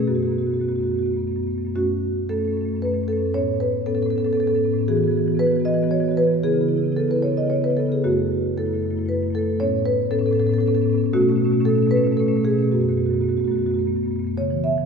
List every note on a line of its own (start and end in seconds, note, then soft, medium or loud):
0.07 0.18 F#2 soft
0.07 0.16 A3 soft
0.07 0.16 B3 soft
0.07 0.15 F#4 soft
0.15 0.28 F#2 soft
0.15 0.24 A3 soft
0.15 0.25 B3 soft
0.15 0.23 F#4 soft
0.23 0.33 A3 soft
0.23 0.32 B3 soft
0.23 0.31 F#4 soft
0.28 0.40 F#2 soft
0.28 0.39 B3 soft
0.28 0.38 F#4 soft
0.33 0.42 A3 soft
0.38 0.50 F#2 soft
0.38 0.51 A3 soft
0.38 0.47 B3 soft
0.38 0.47 F#4 soft
0.47 0.59 F#2 soft
0.47 0.55 B3 soft
0.47 0.54 F#4 soft
0.51 0.60 A3 soft
0.51 0.61 F#4 soft
0.55 0.64 B3 soft
0.59 0.69 F#2 soft
0.59 0.68 A3 soft
0.59 0.69 F#4 soft
0.64 0.72 B3 soft
0.68 0.81 F#2 soft
0.68 0.78 A3 soft
0.68 0.80 B3 soft
0.68 0.76 F#4 soft
0.76 0.87 A3 soft
0.76 0.83 F#4 soft
0.80 0.92 F#2 soft
0.80 0.88 B3 soft
0.80 0.91 F#4 soft
0.87 0.95 A3 soft
0.87 0.96 B3 soft
0.91 1.04 F#2 soft
0.91 0.99 F#4 soft
0.95 1.04 A3 soft
0.95 1.03 B3 soft
0.95 1.06 F#4 soft
1.03 1.16 F#2 soft
1.03 1.13 A3 soft
1.03 1.11 B3 soft
1.03 1.16 F#4 soft
1.11 1.22 A3 soft
1.11 1.19 B3 soft
1.16 1.27 F#2 soft
1.16 1.27 B3 soft
1.22 1.31 A3 soft
1.27 1.37 F#2 soft
1.27 1.40 A3 soft
1.27 1.35 B3 soft
1.35 1.47 F#2 soft
1.35 1.43 B3 soft
1.40 1.47 A3 soft
1.40 1.51 B3 soft
1.47 1.58 F#2 soft
1.47 1.55 A3 soft
1.51 1.61 B3 soft
1.55 1.67 F#2 soft
1.55 1.65 A3 soft
1.61 1.71 B3 soft
1.65 1.71 F#2 soft
1.65 1.71 A3 soft
1.76 2.27 F#2 soft
1.76 2.27 A3 soft
1.76 2.27 C#4 soft
1.76 2.27 F#4 medium
2.29 2.40 F#2 soft
2.29 2.39 A3 soft
2.29 2.38 C#4 soft
2.29 2.79 A4 medium
2.38 2.51 F#2 soft
2.38 2.48 A3 soft
2.38 2.45 C#4 soft
2.45 2.57 A3 soft
2.45 2.53 C#4 soft
2.51 2.62 F#2 soft
2.51 2.61 C#4 soft
2.57 2.65 A3 soft
2.61 2.73 F#2 soft
2.61 2.69 C#4 soft
2.65 2.75 A3 soft
2.65 2.77 C#4 soft
2.73 2.84 F#2 soft
2.73 2.85 A3 soft
2.73 2.85 C#4 soft
2.82 2.94 F#2 soft
2.82 2.95 A3 soft
2.82 2.92 C#4 soft
2.82 3.07 B4 medium
2.92 3.06 F#2 soft
2.92 3.04 A3 soft
2.92 3.01 C#4 soft
3.01 3.13 A3 soft
3.01 3.10 C#4 soft
3.06 3.17 F#2 soft
3.06 3.18 C#4 soft
3.06 3.33 A4 medium
3.13 3.21 A3 soft
3.17 3.31 F#2 soft
3.17 3.26 C#4 soft
3.21 3.31 A3 soft
3.26 3.31 C#4 soft
3.34 3.85 A2 soft
3.34 3.85 B3 soft
3.34 3.85 C#4 soft
3.34 3.59 C#5 medium
3.60 3.85 B4 medium
3.86 3.96 A2 soft
3.86 3.95 B3 soft
3.86 3.95 C#4 soft
3.86 3.95 A4 medium
3.95 4.06 A2 soft
3.95 4.03 B3 soft
3.95 4.02 C#4 soft
3.95 4.02 A4 medium
4.02 4.16 A2 soft
4.02 4.10 B3 soft
4.02 4.10 C#4 soft
4.02 4.10 A4 medium
4.10 4.19 B3 soft
4.10 4.17 C#4 soft
4.10 4.18 A4 medium
4.16 4.26 A2 soft
4.16 4.27 B3 soft
4.16 4.24 C#4 soft
4.16 4.25 A4 medium
4.24 4.37 A2 soft
4.24 4.35 B3 soft
4.24 4.33 C#4 soft
4.24 4.33 A4 medium
4.33 4.43 B3 soft
4.33 4.40 C#4 soft
4.33 4.40 A4 medium
4.37 4.47 A2 soft
4.37 4.48 C#4 soft
4.37 4.47 A4 medium
4.43 4.55 A2 soft
4.43 4.50 B3 soft
4.47 4.58 B3 soft
4.47 4.56 C#4 soft
4.47 4.55 A4 medium
4.55 4.65 A2 soft
4.55 4.65 B3 soft
4.55 4.64 C#4 soft
4.55 4.60 A4 medium
4.64 4.74 A2 soft
4.64 4.73 B3 soft
4.64 4.72 C#4 soft
4.72 4.85 A2 soft
4.72 4.81 B3 soft
4.72 4.79 C#4 soft
4.79 4.85 B3 soft
4.79 4.85 C#4 soft
4.88 4.97 E3 soft
4.88 4.96 B3 soft
4.88 4.96 F#4 soft
4.88 5.37 G#4 medium
4.96 5.07 E3 soft
4.96 5.04 B3 soft
4.96 5.03 F#4 soft
5.03 5.11 B3 soft
5.03 5.10 F#4 soft
5.07 5.18 E3 soft
5.07 5.19 B3 soft
5.07 5.17 F#4 soft
5.17 5.28 E3 soft
5.17 5.27 B3 soft
5.17 5.24 F#4 soft
5.24 5.37 E3 soft
5.24 5.35 B3 soft
5.24 5.31 F#4 soft
5.31 5.37 F#4 soft
5.35 5.47 E3 soft
5.35 5.43 B3 soft
5.35 5.45 F#4 soft
5.39 5.52 B3 soft
5.39 5.64 B4 medium
5.45 5.56 E3 soft
5.45 5.52 F#4 soft
5.52 5.60 B3 soft
5.52 5.60 F#4 soft
5.56 5.66 E3 soft
5.56 5.68 F#4 soft
5.60 5.68 B3 soft
5.65 5.74 E3 soft
5.65 5.76 B3 soft
5.65 5.75 F#4 soft
5.65 5.90 D#5 medium
5.74 5.84 E3 soft
5.74 5.83 B3 soft
5.74 5.82 F#4 soft
5.82 5.92 E3 soft
5.82 5.92 B3 soft
5.82 5.89 F#4 soft
5.89 6.00 E3 soft
5.89 6.00 B3 soft
5.89 5.96 F#4 soft
5.89 6.16 C#5 medium
5.96 6.09 E3 soft
5.96 6.08 B3 soft
5.96 6.04 F#4 soft
6.04 6.11 F#4 soft
6.08 6.18 E3 soft
6.08 6.16 B3 soft
6.08 6.18 F#4 soft
6.16 6.27 E3 soft
6.16 6.24 B3 soft
6.16 6.25 F#4 soft
6.16 6.42 B4 medium
6.24 6.39 E3 soft
6.24 6.31 B3 soft
6.24 6.33 F#4 soft
6.31 6.39 B3 soft
6.31 6.39 F#4 soft
6.43 6.53 C#3 soft
6.43 6.52 B3 soft
6.43 6.52 E4 soft
6.43 6.94 G#4 medium
6.52 6.62 C#3 soft
6.52 6.61 B3 soft
6.52 6.61 E4 soft
6.61 6.73 C#3 soft
6.61 6.68 B3 soft
6.61 6.69 E4 soft
6.68 6.75 B3 soft
6.68 6.77 E4 soft
6.73 6.82 C#3 soft
6.73 6.84 B3 soft
6.77 6.85 E4 soft
6.82 6.91 C#3 soft
6.82 6.92 B3 soft
6.82 6.92 E4 soft
6.91 6.99 C#3 soft
6.91 7.00 B3 soft
6.91 7.00 E4 soft
6.97 7.08 C#3 soft
6.97 7.09 B3 soft
6.97 7.08 E4 soft
6.97 7.10 A4 medium
7.08 7.16 C#3 soft
7.08 7.18 B3 soft
7.08 7.16 E4 soft
7.08 7.24 B4 medium
7.16 7.25 C#3 soft
7.16 7.25 B3 soft
7.16 7.23 E4 soft
7.22 7.34 C#3 soft
7.22 7.32 B3 soft
7.22 7.32 E4 soft
7.22 7.36 C#5 medium
7.32 7.43 C#3 soft
7.32 7.40 B3 soft
7.32 7.39 E4 soft
7.37 7.48 B3 soft
7.37 7.46 E4 soft
7.37 7.50 D#5 medium
7.43 7.51 C#3 soft
7.43 7.53 E4 soft
7.48 7.61 C#3 soft
7.48 7.56 B3 soft
7.48 7.63 C#5 medium
7.53 7.63 B3 soft
7.53 7.61 E4 soft
7.61 7.70 C#3 soft
7.61 7.72 B3 soft
7.61 7.70 E4 soft
7.61 7.77 B4 medium
7.70 7.79 C#3 soft
7.70 7.80 B3 soft
7.70 7.78 E4 soft
7.77 7.89 C#3 soft
7.77 7.87 B3 soft
7.77 7.86 E4 soft
7.77 7.90 A4 medium
7.86 8.00 C#3 soft
7.86 7.95 B3 soft
7.86 7.95 E4 soft
7.92 8.00 B3 soft
7.92 8.00 E4 soft
7.92 8.05 G#4 medium
8.04 8.55 F#2 soft
8.04 8.56 A3 soft
8.04 8.56 E4 soft
8.04 8.55 F#4 medium
8.57 8.66 F#2 soft
8.57 8.66 A3 soft
8.57 8.66 E4 soft
8.57 9.07 A4 medium
8.66 8.76 F#2 soft
8.66 8.74 A3 soft
8.66 8.74 E4 soft
8.74 8.86 F#2 soft
8.74 8.83 A3 soft
8.74 8.82 E4 soft
8.82 8.95 F#2 soft
8.82 8.91 A3 soft
8.82 8.91 E4 soft
8.91 8.99 A3 soft
8.91 8.97 E4 soft
8.95 9.03 F#2 soft
8.95 9.05 E4 soft
8.99 9.06 A3 soft
9.03 9.14 F#2 soft
9.03 9.14 A3 soft
9.03 9.13 E4 soft
9.09 9.33 B4 medium
9.13 9.23 F#2 soft
9.13 9.23 A3 soft
9.13 9.21 E4 soft
9.21 9.33 F#2 soft
9.21 9.30 A3 soft
9.21 9.27 E4 soft
9.27 9.38 A3 soft
9.27 9.34 E4 soft
9.33 9.42 F#2 soft
9.33 9.42 E4 soft
9.33 9.59 A4 medium
9.38 9.57 F#2 soft
9.38 9.46 A3 soft
9.38 9.50 E4 soft
9.46 9.53 A3 soft
9.46 9.57 E4 soft
9.53 9.57 A3 soft
9.60 10.09 A2 soft
9.60 10.09 B3 soft
9.60 10.09 C#4 soft
9.60 9.84 C#5 medium
9.85 10.10 B4 medium
10.11 10.21 A2 soft
10.11 10.19 B3 soft
10.11 10.19 C#4 soft
10.11 10.19 A4 medium
10.19 10.31 A2 soft
10.19 10.27 B3 soft
10.19 10.27 C#4 soft
10.19 10.26 A4 medium
10.26 10.36 B3 soft
10.26 10.35 C#4 soft
10.26 10.33 A4 medium
10.31 10.41 A2 soft
10.31 10.39 A4 medium
10.35 10.44 B3 soft
10.35 10.42 C#4 soft
10.39 10.49 A2 soft
10.39 10.51 C#4 soft
10.39 10.47 A4 medium
10.44 10.52 B3 soft
10.44 10.54 A4 medium
10.49 10.58 A2 soft
10.49 10.60 B3 soft
10.49 10.59 C#4 soft
10.54 10.60 A4 medium
10.58 10.68 A2 soft
10.58 10.68 B3 soft
10.58 10.66 C#4 soft
10.58 10.67 A4 medium
10.66 10.78 A2 soft
10.66 10.75 B3 soft
10.66 10.74 C#4 soft
10.66 10.75 A4 medium
10.74 10.86 A2 soft
10.74 10.84 B3 soft
10.74 10.82 C#4 soft
10.74 10.84 A4 medium
10.82 10.93 B3 soft
10.82 10.90 C#4 soft
10.86 10.95 A2 soft
10.86 10.98 C#4 soft
10.93 11.04 A2 soft
10.93 11.01 B3 soft
10.98 11.10 B3 soft
10.98 11.06 C#4 soft
11.04 11.10 A2 soft
11.04 11.10 C#4 soft
11.13 11.23 B2 medium
11.13 11.22 A3 soft
11.13 11.21 C#4 soft
11.13 11.63 F#4 medium
11.21 11.32 B2 soft
11.21 11.30 A3 soft
11.21 11.29 C#4 soft
11.29 11.42 B2 soft
11.29 11.37 A3 soft
11.29 11.36 C#4 soft
11.36 11.46 A3 soft
11.36 11.45 C#4 soft
11.42 11.52 B2 soft
11.42 11.54 A3 soft
11.42 11.53 C#4 soft
11.52 11.60 B2 soft
11.52 11.62 A3 soft
11.52 11.61 C#4 soft
11.60 11.69 B2 soft
11.60 11.70 A3 soft
11.60 11.68 C#4 soft
11.65 11.78 B2 soft
11.65 11.75 C#4 soft
11.65 11.90 A4 medium
11.70 11.78 A3 soft
11.75 11.87 B2 soft
11.75 11.87 A3 soft
11.75 11.82 C#4 soft
11.82 11.90 C#4 soft
11.87 11.97 B2 soft
11.87 11.95 A3 soft
11.87 11.97 C#4 soft
11.91 12.16 B4 medium
11.95 12.07 B2 soft
11.95 12.03 A3 soft
11.95 12.05 C#4 soft
12.03 12.17 B2 soft
12.03 12.11 A3 soft
12.03 12.12 C#4 soft
12.11 12.21 A3 soft
12.11 12.20 C#4 soft
12.17 12.26 B2 soft
12.17 12.28 A3 soft
12.17 12.28 C#4 soft
12.17 12.43 A4 medium
12.26 12.36 B2 soft
12.26 12.37 A3 soft
12.26 12.35 C#4 soft
12.35 12.44 B2 soft
12.35 12.45 A3 soft
12.35 12.43 C#4 soft
12.43 12.55 B2 soft
12.43 12.53 A3 soft
12.43 12.51 C#4 soft
12.43 12.71 G#4 medium
12.51 12.62 A3 soft
12.51 12.59 C#4 soft
12.55 12.64 B2 soft
12.55 12.68 C#4 soft
12.62 12.68 B2 soft
12.62 12.68 A3 soft
12.72 12.82 F#2 soft
12.72 12.80 A3 soft
12.72 12.80 B3 soft
12.72 12.81 F#4 soft
12.80 12.91 F#2 soft
12.80 12.89 A3 soft
12.80 12.89 B3 soft
12.80 12.89 F#4 soft
12.89 13.00 F#2 soft
12.89 12.98 A3 soft
12.89 12.97 B3 soft
12.89 12.97 F#4 soft
12.97 13.10 F#2 soft
12.97 13.06 A3 soft
12.97 13.04 B3 soft
12.97 13.06 F#4 soft
13.04 13.15 A3 soft
13.04 13.13 B3 soft
13.04 13.13 F#4 soft
13.10 13.19 F#2 soft
13.10 13.22 B3 soft
13.10 13.21 F#4 soft
13.15 13.24 A3 soft
13.19 13.29 F#2 soft
13.19 13.30 B3 soft
13.19 13.29 F#4 soft
13.24 13.31 A3 soft
13.29 13.38 F#2 soft
13.29 13.40 A3 soft
13.29 13.38 B3 soft
13.29 13.37 F#4 soft
13.37 13.48 F#2 soft
13.37 13.48 A3 soft
13.37 13.46 B3 soft
13.37 13.44 F#4 soft
13.44 13.57 F#2 soft
13.44 13.56 A3 soft
13.44 13.55 B3 soft
13.44 13.51 F#4 soft
13.51 13.63 B3 soft
13.51 13.58 F#4 soft
13.56 13.67 F#2 soft
13.56 13.64 A3 soft
13.56 13.66 F#4 soft
13.63 13.76 F#2 soft
13.63 13.71 A3 soft
13.63 13.70 B3 soft
13.63 13.74 F#4 soft
13.70 13.79 A3 soft
13.70 13.79 B3 soft
13.70 13.78 F#4 soft
13.76 13.86 F#2 soft
13.76 13.87 A3 soft
13.76 13.87 B3 soft
13.86 13.96 F#2 soft
13.86 13.95 A3 soft
13.86 13.95 B3 soft
13.95 14.06 F#2 soft
13.95 14.03 A3 soft
13.95 14.04 B3 soft
14.03 14.16 F#2 soft
14.03 14.11 A3 soft
14.03 14.12 B3 soft
14.11 14.19 A3 soft
14.11 14.20 B3 soft
14.16 14.25 F#2 soft
14.16 14.27 A3 soft
14.16 14.27 B3 soft
14.25 14.33 F#2 soft
14.25 14.33 A3 soft
14.25 14.33 B3 soft
14.37 14.86 C#3 soft
14.37 14.63 C#5 medium
14.51 14.72 E3 soft
14.64 14.85 B3 soft
14.64 14.86 E5 medium
14.78 14.86 E3 soft